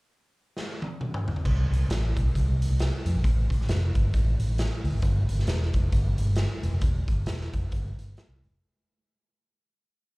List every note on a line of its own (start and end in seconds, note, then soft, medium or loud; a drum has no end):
0.57 snare soft
0.82 high tom medium
1.01 mid tom medium
1.14 mid tom medium
1.28 floor tom medium
1.36 floor tom medium
1.45 1.67 C2 medium
1.45 kick loud
1.45 crash medium
1.70 1.86 C2 medium
1.70 closed hi-hat medium
1.89 2.12 A1 medium
1.89 snare loud
1.89 closed hi-hat medium
2.16 2.32 B1 medium
2.16 kick medium
2.16 closed hi-hat medium
2.35 2.65 C2 medium
2.35 kick medium
2.35 closed hi-hat medium
2.62 closed hi-hat medium
2.70 2.89 C2 medium
2.79 snare medium
2.79 closed hi-hat medium
3.05 3.13 F2 medium
3.05 closed hi-hat medium
3.14 3.22 A#1 medium
3.24 3.47 A1 loud
3.24 kick medium
3.24 closed hi-hat medium
3.50 3.66 A1 medium
3.50 kick medium
3.50 closed hi-hat medium
3.61 snare soft
3.68 3.91 F1 medium
3.68 snare loud
3.68 closed hi-hat medium
3.95 4.11 G1 medium
3.95 kick medium
3.95 closed hi-hat medium
4.14 4.36 A1 loud
4.14 kick medium
4.14 closed hi-hat medium
4.38 4.66 A1 medium
4.38 closed hi-hat medium
4.58 snare medium
4.58 closed hi-hat medium
4.84 4.92 D2 medium
4.84 open hi-hat medium
4.93 5.01 G#1 medium
5.02 5.25 G1 loud
5.02 kick loud
5.02 closed hi-hat medium
5.29 5.44 G1 medium
5.29 closed hi-hat medium
5.39 snare soft
5.47 5.70 E1 medium
5.47 snare loud
5.47 closed hi-hat medium
5.62 snare soft
5.73 5.90 F1 medium
5.73 kick medium
5.73 closed hi-hat medium
5.92 6.15 G1 medium
5.92 kick medium
5.92 closed hi-hat medium
6.18 6.46 G1 medium
6.18 closed hi-hat medium
6.36 snare medium
6.36 closed hi-hat medium
6.63 6.71 E1 medium
6.63 closed hi-hat medium
6.72 6.80 F1 medium
6.81 7.04 E1 loud
6.81 kick loud
6.81 closed hi-hat medium
7.08 7.26 G1 medium
7.08 kick medium
7.08 closed hi-hat medium
7.26 7.49 E1 medium
7.26 snare loud
7.26 closed hi-hat medium
7.41 snare soft
7.53 7.69 F1 medium
7.53 kick medium
7.53 closed hi-hat medium
7.72 7.95 G1 medium
7.72 kick medium
7.72 closed hi-hat medium
7.97 8.14 G1 medium
7.97 closed hi-hat medium
8.17 snare loud
8.17 closed hi-hat medium
8.29 8.41 C2 medium
8.42 8.50 F#1 medium
8.42 open hi-hat medium